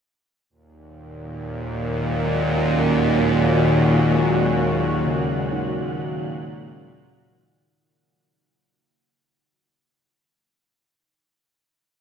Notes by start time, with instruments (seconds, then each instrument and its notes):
0.50 synth drone D#2 A#2, analog synth pad D#3, synth texture F#3 F#5
0.92 analog synth pad G#3
2.11 analog synth pad C#4 F#4
5.06 kettle gongs C#3
5.52 kettle gongs D#4